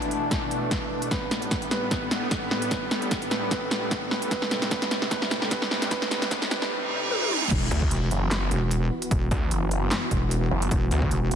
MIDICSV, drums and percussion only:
0, 0, Header, 1, 2, 480
1, 0, Start_track
1, 0, Key_signature, 1, "minor"
1, 0, Tempo, 400000
1, 1334, Time_signature, 4, 2, 24, 8
1, 13627, End_track
2, 0, Start_track
2, 0, Title_t, "Drums"
2, 24, Note_on_c, 9, 42, 35
2, 135, Note_off_c, 9, 42, 0
2, 135, Note_on_c, 9, 42, 46
2, 255, Note_off_c, 9, 42, 0
2, 374, Note_on_c, 9, 36, 90
2, 375, Note_on_c, 9, 38, 68
2, 375, Note_on_c, 9, 42, 73
2, 494, Note_off_c, 9, 36, 0
2, 495, Note_off_c, 9, 38, 0
2, 495, Note_off_c, 9, 42, 0
2, 615, Note_on_c, 9, 42, 50
2, 735, Note_off_c, 9, 42, 0
2, 854, Note_on_c, 9, 36, 91
2, 855, Note_on_c, 9, 38, 68
2, 855, Note_on_c, 9, 42, 71
2, 974, Note_off_c, 9, 36, 0
2, 975, Note_off_c, 9, 38, 0
2, 975, Note_off_c, 9, 42, 0
2, 1225, Note_on_c, 9, 42, 54
2, 1334, Note_on_c, 9, 36, 94
2, 1335, Note_off_c, 9, 42, 0
2, 1335, Note_on_c, 9, 38, 72
2, 1335, Note_on_c, 9, 42, 73
2, 1454, Note_off_c, 9, 36, 0
2, 1455, Note_off_c, 9, 38, 0
2, 1455, Note_off_c, 9, 42, 0
2, 1575, Note_on_c, 9, 38, 75
2, 1575, Note_on_c, 9, 42, 51
2, 1695, Note_off_c, 9, 38, 0
2, 1695, Note_off_c, 9, 42, 0
2, 1705, Note_on_c, 9, 42, 35
2, 1814, Note_on_c, 9, 36, 94
2, 1815, Note_off_c, 9, 42, 0
2, 1815, Note_on_c, 9, 38, 75
2, 1815, Note_on_c, 9, 42, 74
2, 1934, Note_off_c, 9, 36, 0
2, 1935, Note_off_c, 9, 38, 0
2, 1935, Note_off_c, 9, 42, 0
2, 1945, Note_on_c, 9, 42, 35
2, 2055, Note_off_c, 9, 42, 0
2, 2055, Note_on_c, 9, 38, 74
2, 2055, Note_on_c, 9, 42, 48
2, 2175, Note_off_c, 9, 38, 0
2, 2175, Note_off_c, 9, 42, 0
2, 2294, Note_on_c, 9, 36, 88
2, 2295, Note_on_c, 9, 38, 71
2, 2295, Note_on_c, 9, 42, 69
2, 2414, Note_off_c, 9, 36, 0
2, 2415, Note_off_c, 9, 38, 0
2, 2415, Note_off_c, 9, 42, 0
2, 2535, Note_on_c, 9, 38, 80
2, 2535, Note_on_c, 9, 42, 49
2, 2655, Note_off_c, 9, 38, 0
2, 2655, Note_off_c, 9, 42, 0
2, 2774, Note_on_c, 9, 36, 94
2, 2774, Note_on_c, 9, 38, 78
2, 2774, Note_on_c, 9, 42, 73
2, 2894, Note_off_c, 9, 36, 0
2, 2894, Note_off_c, 9, 38, 0
2, 2894, Note_off_c, 9, 42, 0
2, 3015, Note_on_c, 9, 38, 77
2, 3135, Note_off_c, 9, 38, 0
2, 3144, Note_on_c, 9, 42, 57
2, 3254, Note_off_c, 9, 42, 0
2, 3254, Note_on_c, 9, 36, 94
2, 3254, Note_on_c, 9, 38, 84
2, 3254, Note_on_c, 9, 42, 76
2, 3374, Note_off_c, 9, 36, 0
2, 3374, Note_off_c, 9, 38, 0
2, 3374, Note_off_c, 9, 42, 0
2, 3494, Note_on_c, 9, 38, 82
2, 3494, Note_on_c, 9, 42, 52
2, 3614, Note_off_c, 9, 38, 0
2, 3614, Note_off_c, 9, 42, 0
2, 3624, Note_on_c, 9, 42, 37
2, 3734, Note_off_c, 9, 42, 0
2, 3734, Note_on_c, 9, 36, 97
2, 3734, Note_on_c, 9, 38, 81
2, 3734, Note_on_c, 9, 42, 76
2, 3854, Note_off_c, 9, 36, 0
2, 3854, Note_off_c, 9, 38, 0
2, 3854, Note_off_c, 9, 42, 0
2, 3864, Note_on_c, 9, 42, 38
2, 3975, Note_off_c, 9, 42, 0
2, 3975, Note_on_c, 9, 38, 83
2, 3975, Note_on_c, 9, 42, 51
2, 4095, Note_off_c, 9, 38, 0
2, 4095, Note_off_c, 9, 42, 0
2, 4214, Note_on_c, 9, 36, 91
2, 4215, Note_on_c, 9, 38, 84
2, 4215, Note_on_c, 9, 42, 76
2, 4334, Note_off_c, 9, 36, 0
2, 4335, Note_off_c, 9, 38, 0
2, 4335, Note_off_c, 9, 42, 0
2, 4455, Note_on_c, 9, 38, 92
2, 4455, Note_on_c, 9, 42, 52
2, 4575, Note_off_c, 9, 38, 0
2, 4575, Note_off_c, 9, 42, 0
2, 4694, Note_on_c, 9, 36, 100
2, 4695, Note_on_c, 9, 38, 85
2, 4695, Note_on_c, 9, 42, 74
2, 4814, Note_off_c, 9, 36, 0
2, 4815, Note_off_c, 9, 38, 0
2, 4815, Note_off_c, 9, 42, 0
2, 4935, Note_on_c, 9, 38, 86
2, 5055, Note_off_c, 9, 38, 0
2, 5065, Note_on_c, 9, 42, 60
2, 5174, Note_on_c, 9, 36, 96
2, 5175, Note_off_c, 9, 42, 0
2, 5175, Note_on_c, 9, 38, 93
2, 5175, Note_on_c, 9, 42, 81
2, 5294, Note_off_c, 9, 36, 0
2, 5295, Note_off_c, 9, 38, 0
2, 5295, Note_off_c, 9, 42, 0
2, 5305, Note_on_c, 9, 38, 81
2, 5415, Note_off_c, 9, 38, 0
2, 5415, Note_on_c, 9, 38, 92
2, 5415, Note_on_c, 9, 42, 54
2, 5535, Note_off_c, 9, 38, 0
2, 5535, Note_off_c, 9, 42, 0
2, 5545, Note_on_c, 9, 38, 83
2, 5545, Note_on_c, 9, 42, 41
2, 5654, Note_on_c, 9, 36, 104
2, 5655, Note_off_c, 9, 38, 0
2, 5655, Note_off_c, 9, 42, 0
2, 5655, Note_on_c, 9, 38, 95
2, 5655, Note_on_c, 9, 42, 79
2, 5774, Note_off_c, 9, 36, 0
2, 5775, Note_off_c, 9, 38, 0
2, 5775, Note_off_c, 9, 42, 0
2, 5784, Note_on_c, 9, 38, 82
2, 5784, Note_on_c, 9, 42, 40
2, 5895, Note_off_c, 9, 38, 0
2, 5895, Note_off_c, 9, 42, 0
2, 5895, Note_on_c, 9, 38, 92
2, 5895, Note_on_c, 9, 42, 53
2, 6015, Note_off_c, 9, 38, 0
2, 6015, Note_off_c, 9, 42, 0
2, 6024, Note_on_c, 9, 38, 84
2, 6134, Note_on_c, 9, 36, 94
2, 6135, Note_off_c, 9, 38, 0
2, 6135, Note_on_c, 9, 38, 90
2, 6135, Note_on_c, 9, 42, 82
2, 6254, Note_off_c, 9, 36, 0
2, 6255, Note_off_c, 9, 38, 0
2, 6255, Note_off_c, 9, 42, 0
2, 6264, Note_on_c, 9, 38, 85
2, 6375, Note_off_c, 9, 38, 0
2, 6375, Note_on_c, 9, 38, 100
2, 6375, Note_on_c, 9, 42, 55
2, 6495, Note_off_c, 9, 38, 0
2, 6495, Note_off_c, 9, 42, 0
2, 6504, Note_on_c, 9, 38, 82
2, 6614, Note_on_c, 9, 36, 96
2, 6615, Note_off_c, 9, 38, 0
2, 6615, Note_on_c, 9, 38, 93
2, 6615, Note_on_c, 9, 42, 82
2, 6734, Note_off_c, 9, 36, 0
2, 6735, Note_off_c, 9, 38, 0
2, 6735, Note_off_c, 9, 42, 0
2, 6745, Note_on_c, 9, 38, 90
2, 6855, Note_off_c, 9, 38, 0
2, 6855, Note_on_c, 9, 38, 97
2, 6975, Note_off_c, 9, 38, 0
2, 6985, Note_on_c, 9, 38, 84
2, 6985, Note_on_c, 9, 42, 59
2, 7094, Note_on_c, 9, 36, 99
2, 7095, Note_off_c, 9, 38, 0
2, 7095, Note_off_c, 9, 42, 0
2, 7095, Note_on_c, 9, 38, 99
2, 7095, Note_on_c, 9, 42, 86
2, 7214, Note_off_c, 9, 36, 0
2, 7215, Note_off_c, 9, 38, 0
2, 7215, Note_off_c, 9, 42, 0
2, 7225, Note_on_c, 9, 38, 90
2, 7335, Note_off_c, 9, 38, 0
2, 7335, Note_on_c, 9, 38, 100
2, 7335, Note_on_c, 9, 42, 58
2, 7455, Note_off_c, 9, 38, 0
2, 7455, Note_off_c, 9, 42, 0
2, 7465, Note_on_c, 9, 38, 95
2, 7465, Note_on_c, 9, 42, 40
2, 7575, Note_off_c, 9, 38, 0
2, 7575, Note_off_c, 9, 42, 0
2, 7575, Note_on_c, 9, 36, 102
2, 7575, Note_on_c, 9, 38, 105
2, 7575, Note_on_c, 9, 42, 80
2, 7695, Note_off_c, 9, 36, 0
2, 7695, Note_off_c, 9, 38, 0
2, 7695, Note_off_c, 9, 42, 0
2, 7704, Note_on_c, 9, 38, 95
2, 7704, Note_on_c, 9, 42, 41
2, 7815, Note_off_c, 9, 38, 0
2, 7815, Note_off_c, 9, 42, 0
2, 7815, Note_on_c, 9, 38, 103
2, 7815, Note_on_c, 9, 42, 53
2, 7935, Note_off_c, 9, 38, 0
2, 7935, Note_off_c, 9, 42, 0
2, 7944, Note_on_c, 9, 38, 97
2, 8064, Note_off_c, 9, 38, 0
2, 8535, Note_on_c, 9, 48, 62
2, 8655, Note_off_c, 9, 48, 0
2, 8665, Note_on_c, 9, 48, 63
2, 8775, Note_on_c, 9, 47, 83
2, 8785, Note_off_c, 9, 48, 0
2, 8895, Note_off_c, 9, 47, 0
2, 8905, Note_on_c, 9, 45, 86
2, 9015, Note_on_c, 9, 36, 114
2, 9015, Note_on_c, 9, 42, 85
2, 9015, Note_on_c, 9, 49, 104
2, 9025, Note_off_c, 9, 45, 0
2, 9135, Note_off_c, 9, 36, 0
2, 9135, Note_off_c, 9, 42, 0
2, 9135, Note_off_c, 9, 49, 0
2, 9255, Note_on_c, 9, 42, 56
2, 9375, Note_off_c, 9, 42, 0
2, 9384, Note_on_c, 9, 36, 62
2, 9495, Note_on_c, 9, 42, 78
2, 9504, Note_off_c, 9, 36, 0
2, 9615, Note_off_c, 9, 42, 0
2, 9735, Note_on_c, 9, 42, 53
2, 9855, Note_off_c, 9, 42, 0
2, 9975, Note_on_c, 9, 38, 111
2, 9975, Note_on_c, 9, 39, 94
2, 9975, Note_on_c, 9, 42, 85
2, 10095, Note_off_c, 9, 38, 0
2, 10095, Note_off_c, 9, 39, 0
2, 10095, Note_off_c, 9, 42, 0
2, 10215, Note_on_c, 9, 42, 59
2, 10335, Note_off_c, 9, 42, 0
2, 10455, Note_on_c, 9, 42, 79
2, 10575, Note_off_c, 9, 42, 0
2, 10825, Note_on_c, 9, 42, 63
2, 10934, Note_on_c, 9, 36, 121
2, 10935, Note_off_c, 9, 42, 0
2, 10935, Note_on_c, 9, 42, 81
2, 11054, Note_off_c, 9, 36, 0
2, 11055, Note_off_c, 9, 42, 0
2, 11174, Note_on_c, 9, 36, 108
2, 11175, Note_on_c, 9, 42, 54
2, 11294, Note_off_c, 9, 36, 0
2, 11295, Note_off_c, 9, 42, 0
2, 11415, Note_on_c, 9, 42, 78
2, 11535, Note_off_c, 9, 42, 0
2, 11655, Note_on_c, 9, 42, 54
2, 11775, Note_off_c, 9, 42, 0
2, 11895, Note_on_c, 9, 38, 118
2, 11895, Note_on_c, 9, 39, 95
2, 11895, Note_on_c, 9, 42, 81
2, 12015, Note_off_c, 9, 38, 0
2, 12015, Note_off_c, 9, 39, 0
2, 12015, Note_off_c, 9, 42, 0
2, 12135, Note_on_c, 9, 36, 60
2, 12135, Note_on_c, 9, 42, 56
2, 12255, Note_off_c, 9, 36, 0
2, 12255, Note_off_c, 9, 42, 0
2, 12375, Note_on_c, 9, 42, 81
2, 12495, Note_off_c, 9, 42, 0
2, 12745, Note_on_c, 9, 42, 60
2, 12854, Note_on_c, 9, 36, 122
2, 12855, Note_off_c, 9, 42, 0
2, 12855, Note_on_c, 9, 42, 81
2, 12974, Note_off_c, 9, 36, 0
2, 12975, Note_off_c, 9, 42, 0
2, 13095, Note_on_c, 9, 42, 53
2, 13215, Note_off_c, 9, 42, 0
2, 13224, Note_on_c, 9, 36, 69
2, 13335, Note_on_c, 9, 42, 80
2, 13344, Note_off_c, 9, 36, 0
2, 13455, Note_off_c, 9, 42, 0
2, 13575, Note_on_c, 9, 42, 51
2, 13627, Note_off_c, 9, 42, 0
2, 13627, End_track
0, 0, End_of_file